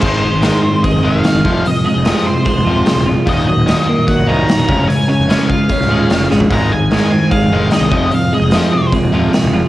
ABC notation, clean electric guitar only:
X:1
M:4/4
L:1/8
Q:1/4=149
K:Abmix
V:1 name="Clean electric guitar" clef=bass
A,, A, E, C A, E, A, F,, | F,, A, F, C A, F, A, F, | E,, G, E, B, G, E, G, D, | D, D A, F D A, D A, |
A,, A, E, C A, E, A, F,, | F,, A, F, C A, F, A, F, |]